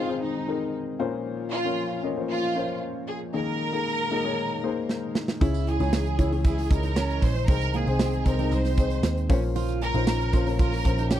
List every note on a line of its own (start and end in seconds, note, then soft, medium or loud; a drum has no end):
0.00 1.02 C3 medium
0.00 0.99 D#3 medium
0.00 0.97 G#3 medium
0.00 0.09 C4 medium
0.00 0.09 D#4 medium
0.00 0.99 D#4 medium
0.00 0.19 F4 medium
0.00 0.09 G#4 medium
0.00 0.48 A#4 medium
0.00 0.09 C5 medium
0.09 0.43 C4 medium
0.09 0.43 D#4 medium
0.09 0.43 G#4 medium
0.09 0.43 C5 medium
0.23 0.75 D#4 medium
0.48 1.00 C4 medium
0.48 1.00 D#4 medium
0.48 1.00 G#4 medium
0.48 0.98 A#4 medium
0.99 1.74 A#2 medium
0.99 3.32 F3 medium
0.99 3.32 A#3 medium
0.99 1.56 C#4 medium
0.99 3.32 C#4 medium
0.99 1.56 F4 medium
0.99 1.57 A#4 medium
0.99 1.57 C5 loud
1.52 2.00 F4 loud
1.64 1.99 C#4 medium
1.64 1.99 F4 medium
1.64 1.99 A#4 medium
1.64 1.99 C#5 medium
2.03 2.15 C#4 medium
2.03 2.15 F4 medium
2.03 2.15 A#4 medium
2.03 2.15 D#5 medium
2.16 2.51 C#4 medium
2.16 2.51 F4 medium
2.16 2.51 A#4 medium
2.16 2.51 C5 medium
2.30 2.78 F4 loud
2.55 3.24 C#4 medium
2.55 3.24 F4 medium
2.55 3.24 A#4 medium
2.55 3.24 C5 medium
3.08 3.20 G#4 medium
3.34 5.39 A#2 medium
3.34 5.39 D#3 medium
3.34 4.08 D#3 medium
3.34 7.44 G#3 medium
3.34 3.68 A#3 medium
3.34 5.39 D#4 medium
3.34 3.68 D#4 medium
3.34 3.68 G#4 medium
3.34 3.68 A#4 medium
3.34 5.11 A#4 loud
3.72 4.07 A#3 medium
3.72 4.07 D#4 medium
3.72 4.07 G#4 medium
3.72 4.07 A#4 medium
4.11 4.23 A#3 medium
4.11 4.23 D#4 medium
4.11 4.23 G#4 medium
4.11 4.23 A#4 loud
4.24 4.58 A#3 medium
4.24 4.58 D#4 medium
4.24 4.58 G#4 medium
4.24 4.59 C#5 medium
4.63 5.31 A#3 medium
4.63 5.31 D#4 medium
4.63 5.31 G#4 medium
4.63 5.31 C5 medium
4.89 snare medium
5.15 snare medium
5.28 snare medium
5.41 5.77 C#2 loud
5.41 6.15 C#3 medium
5.41 7.47 C#3 medium
5.41 7.47 E3 medium
5.41 5.75 C#4 medium
5.41 5.75 E4 medium
5.41 5.66 E4 loud
5.41 7.47 E4 medium
5.41 5.75 G#4 medium
5.41 5.75 C#5 loud
5.41 kick loud
5.41 open hi-hat medium
5.41 tambourine soft
5.54 tambourine medium
5.67 6.42 G#4 medium
5.67 hi-hat pedal medium
5.67 open hi-hat medium
5.79 6.16 C#2 loud
5.79 6.14 C#4 medium
5.79 6.05 D#4 medium
5.79 6.14 E4 medium
5.79 6.14 G#4 medium
5.79 6.14 C#5 medium
5.79 open hi-hat soft
5.79 tambourine soft
5.93 snare loud
5.93 hi-hat pedal medium
5.93 open hi-hat loud
5.93 tambourine medium
6.06 hi-hat pedal medium
6.18 6.67 C#2 medium
6.18 6.30 C#4 medium
6.18 6.29 E4 medium
6.18 6.31 E4 medium
6.18 6.30 G#4 medium
6.18 6.30 C#5 medium
6.18 kick medium
6.18 hi-hat pedal medium
6.18 open hi-hat medium
6.18 tambourine medium
6.31 6.65 C#4 medium
6.31 6.65 E4 medium
6.31 6.66 G#4 medium
6.31 6.66 C#5 medium
6.31 open hi-hat soft
6.44 6.57 E4 medium
6.44 6.70 G#4 medium
6.44 kick medium
6.44 hi-hat pedal medium
6.44 open hi-hat medium
6.44 tambourine soft
6.58 snare soft
6.58 hi-hat pedal medium
6.58 open hi-hat soft
6.58 tambourine soft
6.70 7.19 C#2 loud
6.70 7.38 C#4 medium
6.70 7.38 E4 medium
6.70 7.39 G#4 medium
6.70 7.23 A#4 loud
6.70 7.39 D#5 medium
6.70 kick medium
6.70 hi-hat pedal medium
6.70 open hi-hat medium
6.70 tambourine medium
6.83 6.96 D#4 medium
6.83 hi-hat pedal medium
6.83 open hi-hat medium
6.83 tambourine soft
6.96 7.33 C#4 medium
6.96 snare loud
6.96 hi-hat pedal medium
6.96 open hi-hat loud
6.96 tambourine medium
7.09 hi-hat pedal medium
7.22 7.47 A#1 loud
7.22 7.49 C5 loud
7.22 kick medium
7.22 hi-hat pedal medium
7.22 open hi-hat medium
7.22 tambourine medium
7.35 open hi-hat medium
7.48 7.85 C2 loud
7.48 8.22 C3 medium
7.48 9.28 C3 medium
7.48 9.28 D#3 medium
7.48 9.28 G#3 medium
7.48 7.82 C4 medium
7.48 7.82 D#4 medium
7.48 9.28 D#4 medium
7.48 7.82 G#4 medium
7.48 7.73 A#4 loud
7.48 7.82 C5 medium
7.48 kick loud
7.48 hi-hat pedal medium
7.48 open hi-hat medium
7.48 tambourine medium
7.61 hi-hat pedal medium
7.61 tambourine soft
7.74 7.87 A#3 medium
7.74 8.27 G#4 loud
7.74 hi-hat pedal medium
7.74 open hi-hat medium
7.87 8.23 C2 medium
7.87 8.21 C4 medium
7.87 8.21 D#4 medium
7.87 8.21 G#4 medium
7.87 8.21 C5 medium
7.87 open hi-hat soft
7.87 tambourine soft
7.99 8.13 C4 medium
7.99 snare loud
7.99 hi-hat pedal medium
7.99 open hi-hat medium
7.99 tambourine medium
8.13 hi-hat pedal medium
8.26 8.50 C2 medium
8.26 8.37 C4 medium
8.26 8.37 D#4 medium
8.26 8.37 G#4 medium
8.26 8.52 A#4 medium
8.26 8.38 C5 medium
8.26 kick medium
8.26 hi-hat pedal medium
8.26 open hi-hat medium
8.26 tambourine medium
8.39 8.73 C4 medium
8.39 8.73 D#4 medium
8.39 8.76 D#4 medium
8.39 8.73 G#4 medium
8.39 8.73 D#5 medium
8.39 open hi-hat soft
8.39 tambourine soft
8.52 9.00 C2 loud
8.52 9.30 C5 medium
8.52 hi-hat pedal medium
8.52 open hi-hat medium
8.52 tambourine medium
8.64 snare soft
8.64 hi-hat pedal medium
8.64 open hi-hat soft
8.64 tambourine soft
8.77 9.30 C4 medium
8.77 9.30 D#4 medium
8.77 9.30 G#4 medium
8.77 9.28 C5 medium
8.77 kick medium
8.77 hi-hat pedal medium
8.77 open hi-hat medium
8.77 tambourine medium
8.90 hi-hat pedal medium
8.90 open hi-hat medium
8.90 tambourine soft
9.03 9.28 D#2 medium
9.03 snare loud
9.03 hi-hat pedal medium
9.03 open hi-hat loud
9.03 tambourine medium
9.17 hi-hat pedal medium
9.29 9.90 A#1 loud
9.29 10.03 A#2 medium
9.29 11.20 C#3 medium
9.29 11.20 F3 medium
9.29 11.20 A#3 medium
9.29 9.86 C#4 loud
9.29 11.20 C#4 medium
9.29 9.42 C#4 medium
9.29 9.86 F4 medium
9.29 9.86 A#4 medium
9.29 9.86 C5 loud
9.29 kick loud
9.29 hi-hat pedal medium
9.29 open hi-hat medium
9.29 tambourine medium
9.42 open hi-hat medium
9.56 9.80 F4 loud
9.56 hi-hat pedal medium
9.56 open hi-hat medium
9.56 tambourine medium
9.68 hi-hat pedal medium
9.68 tambourine medium
9.81 10.56 A#4 loud
9.81 hi-hat pedal medium
9.81 open hi-hat medium
9.94 10.31 A#1 loud
9.94 10.28 C#4 medium
9.94 10.19 D#4 medium
9.94 10.28 F4 medium
9.94 10.28 A#4 medium
9.94 10.29 C5 medium
9.94 open hi-hat soft
9.94 tambourine soft
10.07 snare loud
10.07 hi-hat pedal medium
10.07 open hi-hat loud
10.07 tambourine medium
10.20 hi-hat pedal medium
10.20 open hi-hat soft
10.33 10.82 A#1 loud
10.33 10.45 C#4 medium
10.33 10.46 F4 medium
10.33 10.45 F4 medium
10.33 10.45 A#4 medium
10.33 10.45 C5 medium
10.33 kick medium
10.33 hi-hat pedal medium
10.33 open hi-hat medium
10.33 tambourine medium
10.46 10.80 C#4 medium
10.46 10.81 F4 medium
10.46 10.81 A#4 medium
10.46 10.81 C5 medium
10.46 hi-hat pedal medium
10.46 open hi-hat soft
10.59 10.72 F4 medium
10.59 11.08 A#4 loud
10.59 kick loud
10.59 hi-hat pedal medium
10.59 open hi-hat medium
10.59 tambourine soft
10.72 snare soft
10.72 hi-hat pedal medium
10.72 open hi-hat soft
10.72 tambourine soft
10.85 11.20 A#1 loud
10.85 11.20 C#4 medium
10.85 11.20 F4 medium
10.85 11.20 A#4 medium
10.85 11.20 C5 medium
10.85 kick medium
10.85 hi-hat pedal medium
10.85 open hi-hat medium
10.85 tambourine soft
10.98 11.11 D#4 medium
10.98 hi-hat pedal medium
10.98 open hi-hat medium
10.98 tambourine soft
11.11 11.20 C#4 medium
11.11 11.20 G4 loud
11.11 snare loud
11.11 hi-hat pedal medium
11.11 open hi-hat loud
11.11 tambourine medium